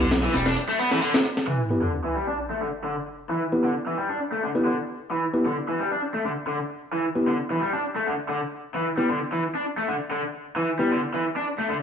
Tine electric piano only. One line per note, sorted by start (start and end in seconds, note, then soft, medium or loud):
1.70 1.81 B3 medium
1.70 1.81 E4 medium
1.70 1.81 G4 medium
1.70 1.81 B4 medium
3.52 3.68 B3 medium
3.52 3.68 E4 medium
3.52 3.68 G4 medium
3.52 3.68 B4 medium
4.55 4.70 B3 medium
4.55 4.70 E4 medium
4.55 4.70 G4 medium
4.55 4.70 B4 medium
5.34 5.44 B3 medium
5.34 5.44 E4 medium
5.34 5.44 G4 medium
5.34 5.44 B4 medium
7.15 7.32 B3 medium
7.15 7.32 E4 medium
7.15 7.32 G4 medium
7.15 7.32 B4 medium
8.97 9.08 B3 medium
8.97 9.08 E4 medium
8.97 9.08 G4 medium
8.97 9.08 B4 medium
10.79 10.95 B3 medium
10.79 10.95 E4 medium
10.79 10.95 G4 medium
10.79 10.95 B4 medium